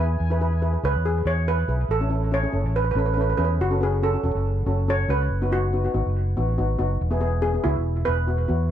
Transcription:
0.00 fingered electric bass E2, steel pan E4 G#4 B4
0.20 fingered electric bass E2
0.30 steel pan E4 G#4 B4
0.41 steel pan E4 G#4 B4
0.62 steel pan E4 G#4 B4
0.73 steel pan E4 G#4 B4
0.83 fingered electric bass C#2, steel pan E4 G#4 B4 C#5
0.95 fingered electric bass E2
1.05 steel pan G#4
1.25 fingered electric bass E2, steel pan E4 G#4 C#5
1.48 steel pan E4 G#4 B4
1.68 fingered electric bass B1, steel pan E4 G#4 B4
1.89 fingered electric bass A1, steel pan A4
2.01 steel pan C#4 E4 A4
2.10 steel pan C#4 E4 A4
2.31 steel pan C#4 E4 A4 C#5
2.43 steel pan C#4 E4 G#4
2.52 fingered electric bass F#1, steel pan C#4 E4 A4
2.64 fingered electric bass A1
2.76 steel pan B4
2.85 steel pan B4
2.91 fingered electric bass A1, steel pan B4
2.96 steel pan C#4 E4 A4 B4
3.06 steel pan B4
3.14 steel pan C#4 E4 A4 B4
3.21 steel pan B4
3.30 steel pan B4
3.37 fingered electric bass E2, steel pan C#4 E4 G#4 B4
3.45 steel pan B4
3.59 fingered electric bass F#1, steel pan F#4
3.71 steel pan C#4 F#4 A4
3.80 steel pan C#4 F#4 G#4 B4
4.02 steel pan C#4 F#4 A4
4.13 steel pan C#4 F#4 A4
4.23 fingered electric bass E1, steel pan C#4 F#4 A4
4.35 fingered electric bass F#1
4.66 fingered electric bass F#1, steel pan C#4 F#4 A4
4.88 steel pan C#4 F#4 A4 C#5
5.08 fingered electric bass C#2, steel pan C#4 F#4 B4
5.30 fingered electric bass F#1
5.41 steel pan B3 D#4 F#4
5.51 steel pan B3 D#4 F#4
5.73 steel pan B3 D#4 F#4
5.84 steel pan B3 D#4 F#4
5.94 fingered electric bass G#1, steel pan B3 D#4 F#4
6.06 fingered electric bass F#1
6.37 fingered electric bass A1, steel pan B3 D#4 F#4
6.58 fingered electric bass G#1, steel pan B3 D#4 F#4
6.78 fingered electric bass F#1, steel pan B3 D#4 F#4
7.01 fingered electric bass E1
7.10 steel pan B3 E4 G#4
7.20 steel pan B3 E4 G#4
7.42 steel pan B3 E4 G#4
7.54 steel pan B3 E4 G#4
7.64 fingered electric bass C#2, steel pan B3 E4 F#4
7.76 fingered electric bass E1
8.05 fingered electric bass E1, steel pan B3 E4 G#4 B4
8.27 steel pan B3 E4 F#4
8.48 fingered electric bass E2, steel pan B3 E4 F#4

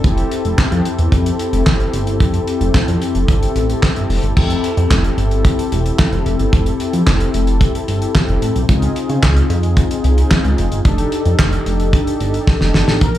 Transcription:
Already playing: analog polysynth A4
0.03 analog synth bass F1, analog polysynth C4 E4 G4 G#4, kick, closed hi-hat
0.12 analog polysynth A4
0.18 closed hi-hat
0.31 closed hi-hat
0.45 analog synth bass F1, closed hi-hat
0.58 analog synth bass F2, kick, snare, clap
0.72 analog synth bass F2, closed hi-hat
0.85 closed hi-hat
0.99 analog synth bass E2, closed hi-hat
1.12 analog synth bass F2, kick, closed hi-hat
1.26 closed hi-hat
1.39 closed hi-hat
1.53 analog synth bass F1, closed hi-hat
1.66 analog synth bass G1, kick, snare, clap
1.80 closed hi-hat
1.93 analog synth bass G1, closed hi-hat
2.07 closed hi-hat
2.20 analog synth bass F1, kick, closed hi-hat
2.34 closed hi-hat
2.48 closed hi-hat
2.61 analog synth bass F1, closed hi-hat
2.74 analog synth bass F2, kick, snare, clap
2.88 analog synth bass F2, closed hi-hat
3.02 closed hi-hat
3.15 analog synth bass F1, closed hi-hat
3.28 analog synth bass G1, kick, closed hi-hat
3.43 closed hi-hat
3.56 analog synth bass A1, closed hi-hat
3.70 closed hi-hat
3.83 kick, snare, clap
3.96 analog synth bass G1, closed hi-hat
4.10 analog synth bass F1, open hi-hat
4.23 analog synth bass G1, closed hi-hat
4.36 analog synth bass F1, analog polysynth C4 E4 G4 A4, kick, crash
4.50 closed hi-hat
4.64 closed hi-hat
4.77 analog synth bass F2, closed hi-hat
4.91 analog synth bass F1, kick, snare, clap
5.04 closed hi-hat
5.18 analog synth bass G1, closed hi-hat
5.31 closed hi-hat
5.45 kick, closed hi-hat
5.59 closed hi-hat
5.72 analog synth bass E1, closed hi-hat
5.86 closed hi-hat
5.99 kick, snare, clap
6.12 analog synth bass F1, closed hi-hat
6.26 analog synth bass F1, closed hi-hat
6.39 analog synth bass G1, closed hi-hat
6.53 analog synth bass F1, kick, closed hi-hat
6.66 closed hi-hat
6.80 closed hi-hat
6.93 analog synth bass F2, closed hi-hat
7.07 analog synth bass F1, kick, snare, clap
7.20 closed hi-hat
7.34 analog synth bass F1, closed hi-hat
7.47 closed hi-hat
7.61 kick, closed hi-hat
7.75 closed hi-hat
7.88 analog synth bass G1, closed hi-hat
8.02 closed hi-hat
8.15 kick, snare, clap
8.28 analog synth bass F1, closed hi-hat
8.42 analog synth bass A1, closed hi-hat
8.55 analog synth bass B1, closed hi-hat
8.68 analog synth bass C#2, analog polysynth C4 D#4 F4 G#4, kick, closed hi-hat
8.82 closed hi-hat
8.96 closed hi-hat
9.09 analog synth bass C#3, closed hi-hat
9.23 analog synth bass C#2, kick, snare, clap
9.36 closed hi-hat
9.50 analog synth bass F2, closed hi-hat
9.63 closed hi-hat
9.77 kick, closed hi-hat
9.91 closed hi-hat
10.04 analog synth bass C2, closed hi-hat
10.18 closed hi-hat
10.31 kick, snare, clap
10.44 analog synth bass C#2, closed hi-hat
10.58 analog synth bass F1, closed hi-hat
10.72 analog synth bass G1, closed hi-hat
10.85 analog synth bass F1, analog polysynth D4 D#4 G4 A4, kick, closed hi-hat
10.98 closed hi-hat
11.12 closed hi-hat
11.25 analog synth bass F2, closed hi-hat
11.39 analog synth bass F1, kick, snare, clap
11.53 closed hi-hat
11.66 analog synth bass F1, closed hi-hat
11.80 closed hi-hat
11.93 kick, closed hi-hat
12.07 closed hi-hat
12.20 analog synth bass G1, closed hi-hat
12.34 closed hi-hat
12.47 kick, snare
12.61 analog synth bass F1, snare
12.74 analog synth bass G1, snare
12.88 analog synth bass A1, snare
13.01 analog synth bass A#1, analog polysynth A#4, kick, closed hi-hat
13.15 closed hi-hat

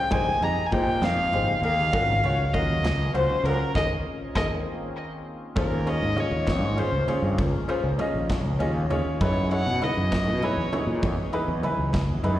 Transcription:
Already playing: analog synth pad A#3, grand piano C#4 F4 G#4 C5, violin G5
0.11 fretless electric bass A#1, analog synth pad G#3 D#4, grand piano D#4 G4 G#4 C5, violin G#5, kick, ride, muted conga, high conga
0.26 low conga
0.41 fretless electric bass F2, grand piano D#4 G4 G#4 D#5, violin A#5, ride
0.66 violin G#5
0.72 fretless electric bass A#2, grand piano D#4 G4 G#4 C5, violin G5, kick, ride, high conga, low conga
0.87 low conga
1.02 fretless electric bass F2, violin F5, snare, ride, muted conga
1.18 low conga
1.32 fretless electric bass G#1, grand piano D#4 G4 G#4 C5, ride, high conga
1.48 low conga
1.62 fretless electric bass D#2, grand piano D#4 G4 G#4 A#4, violin F5, ride
1.92 fretless electric bass G#1, analog synth pad F#3 C#4, grand piano C#4 F4 F#4 A#4, kick, ride, muted conga, high conga
2.09 low conga
2.23 fretless electric bass C#2, grand piano C#4 F4 F#4 C#5, ride
2.54 fretless electric bass D#2, grand piano C#4 F4 F#4 A#4, violin D#5, kick, ride, high conga, low conga
2.69 low conga
2.83 fretless electric bass C#2, snare, ride, muted conga
3.00 low conga
3.14 fretless electric bass C#2, grand piano C#4 F4 F#4 C5, violin C5, ride, high conga
3.29 muted fretless electric bass stroke, low conga
3.43 fretless electric bass C#2, grand piano C#4 F4 F#4 A#4, violin A#4, ride, low conga
3.74 fretless electric bass D#2, analog synth pad D#3 A#3 C4 F4 G#4, grand piano D#4 G#4 A#4, violin D#5, kick, snare, muted conga
4.35 fretless electric bass D#2, grand piano D#4 G#4 A#4, violin D#5, kick, snare, muted conga
5.56 fretless electric bass D#2, analog synth pad D#3 A#3 C#4 D#4 F4 G#4, grand piano C#4 F4 G#4 C5, violin A#4, kick, ride, muted conga, high conga, low conga
5.86 grand piano C#4 F4 G#4 C#5, violin D#5, ride
6.02 fretless electric bass G#2
6.15 grand piano C#4 F4 G#4 D#5, ride, high conga, low conga
6.20 violin C#5
6.31 fretless electric bass D#2
6.47 kick, snare, ride, muted conga, low conga
6.62 fretless electric bass G#2, low conga
6.77 grand piano C#4 F4 G#4 C5, violin C5, ride, high conga
6.92 fretless electric bass C#2
7.07 grand piano C#4 F4 G#4 C#5, muted fretless electric bass stroke, ride, low conga
7.22 fretless electric bass G2, low conga
7.38 fretless electric bass C#2, kick, ride, muted conga, high conga, low conga
7.68 grand piano C#4 F4 G#4 C5, muted fretless electric bass stroke, ride
7.84 fretless electric bass C#2
7.98 grand piano C#4 F4 G#4 D#5, ride, high conga, low conga
8.14 fretless electric bass A#1
8.29 kick, snare, ride, muted conga, low conga
8.45 fretless electric bass C#2, low conga
8.59 fretless electric bass D#2, grand piano C#4 F4 G#4 D#5, ride, high conga
8.90 fretless electric bass D#2, grand piano C#4 F4 G#4 C#5, ride, low conga
9.06 muted fretless electric bass stroke, low conga
9.20 fretless electric bass F#2, analog synth pad E3 F#3 B4 D#5, grand piano D#4 E4 G#4 B4, violin C#5, kick, ride, muted conga, high conga, low conga
9.51 grand piano D#4 E4 G#4 C#5, violin F#5, ride
9.66 fretless electric bass B2
9.81 grand piano D#4 E4 G#4 B4, violin D#5, ride, high conga, low conga
9.97 fretless electric bass F#2
10.12 kick, snare, ride, muted conga, low conga
10.27 fretless electric bass B2, low conga
10.42 grand piano D#4 E4 G#4 B4, violin C#5, ride, high conga
10.57 fretless electric bass E2
10.72 grand piano D#4 E4 G#4 C#5, ride, low conga
10.87 fretless electric bass A#2, low conga
11.03 fretless electric bass E2, kick, ride, muted conga, high conga, low conga
11.19 low conga
11.32 grand piano D#4 E4 G#4 B4, muted fretless electric bass stroke, ride
11.48 fretless electric bass E2, low conga
11.63 grand piano D#4 E4 G#4 B4, ride, high conga, low conga
11.78 fretless electric bass C#2
11.93 kick, snare, ride, muted conga, low conga
12.09 fretless electric bass E2
12.23 fretless electric bass F#2, grand piano D#4 E4 G#4 B4, ride, high conga

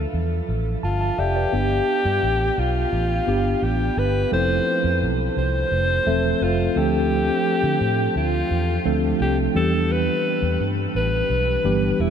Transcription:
Already playing: tine electric piano F3 D4 A4 E5, alto saxophone F4
0.14 fingered electric bass E2
0.49 fingered electric bass A1
0.83 fingered electric bass G1, alto saxophone F4, tine electric piano A5
1.01 tine electric piano F5 A5
1.18 fingered electric bass F1, alto saxophone G4, tine electric piano D5 E5 F5
1.36 tine electric piano B4 D5
1.52 fingered electric bass G1, tine electric piano B3 D4 G4
2.05 fingered electric bass G2
2.23 fingered electric bass A1
2.58 fingered electric bass B1, alto saxophone F4
2.93 fingered electric bass A1
3.27 fingered electric bass G1, tine electric piano B3 D4 G4
3.62 fingered electric bass A1, alto saxophone G4
3.97 fingered electric bass G1, alto saxophone B4
4.32 fingered electric bass F1, tine electric piano F3 A3 C4 E4 A4, alto saxophone C5
4.84 fingered electric bass F2
5.02 fingered electric bass B1
5.37 fingered electric bass C2, alto saxophone C5
5.72 fingered electric bass F1
6.06 fingered electric bass E1, tine electric piano F3 A3 C4 A4 E5
6.41 fingered electric bass F1, alto saxophone F4
6.76 fingered electric bass D2, tine electric piano F3 A3 C4 D4 A4, alto saxophone G4
7.63 fingered electric bass D3
7.81 fingered electric bass A2
8.16 fingered electric bass D2, alto saxophone F4
8.51 fingered electric bass E2
8.85 fingered electric bass D2, tine electric piano F3 A3 C4 D4 A4
9.20 fingered electric bass C2, alto saxophone G4
9.55 fingered electric bass E2, tine electric piano E3 G3 B3 D4 G4, alto saxophone A4
9.91 alto saxophone B4
10.42 fingered electric bass E2
10.60 fingered electric bass G2
10.95 fingered electric bass A1, alto saxophone B4
11.30 fingered electric bass B1
11.64 fingered electric bass G1, tine electric piano E3 G3 B3 D4 G4
11.99 fingered electric bass E1, alto saxophone E4

